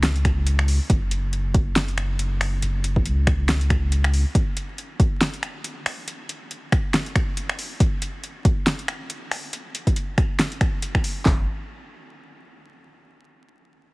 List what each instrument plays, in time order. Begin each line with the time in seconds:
Already playing: sub bass C#2
0.03 finger snap, snare, closed hi-hat
0.16 closed hi-hat
0.25 finger snap, kick, closed hi-hat
0.47 closed hi-hat
0.59 finger snap
0.68 open hi-hat
0.90 sub bass F#1, kick, closed hi-hat
1.11 closed hi-hat
1.33 closed hi-hat
1.54 kick, closed hi-hat
1.76 snare, closed hi-hat
1.88 closed hi-hat
1.98 finger snap, closed hi-hat
2.19 closed hi-hat
2.41 finger snap, open hi-hat
2.62 sub bass F#1, closed hi-hat
2.84 closed hi-hat
2.96 kick
3.06 sub bass C#2, closed hi-hat
3.27 finger snap, kick, closed hi-hat
3.49 finger snap, snare, closed hi-hat
3.61 closed hi-hat
3.70 finger snap, kick, closed hi-hat
3.92 closed hi-hat
4.04 finger snap
4.14 open hi-hat
4.35 kick, closed hi-hat
4.57 closed hi-hat
4.78 closed hi-hat
5.00 kick, closed hi-hat
5.21 snare, closed hi-hat
5.34 closed hi-hat
5.43 finger snap, closed hi-hat
5.64 closed hi-hat
5.86 finger snap, open hi-hat
6.08 closed hi-hat
6.29 closed hi-hat
6.51 closed hi-hat
6.72 finger snap, kick, closed hi-hat
6.94 finger snap, snare, closed hi-hat
7.06 closed hi-hat
7.16 finger snap, kick, closed hi-hat
7.37 closed hi-hat
7.49 finger snap
7.59 open hi-hat
7.80 kick, closed hi-hat
8.02 closed hi-hat
8.24 closed hi-hat
8.45 kick, closed hi-hat
8.67 snare, closed hi-hat
8.79 closed hi-hat
8.88 finger snap, closed hi-hat
9.10 closed hi-hat
9.31 finger snap, open hi-hat
9.53 closed hi-hat
9.75 closed hi-hat
9.87 kick, closed hi-hat
9.96 closed hi-hat
10.18 finger snap, kick, closed hi-hat
10.39 finger snap, snare, closed hi-hat
10.52 closed hi-hat
10.61 finger snap, kick, closed hi-hat
10.82 closed hi-hat
10.95 finger snap, kick
11.04 open hi-hat
11.26 sub bass F#1, kick, snare, clap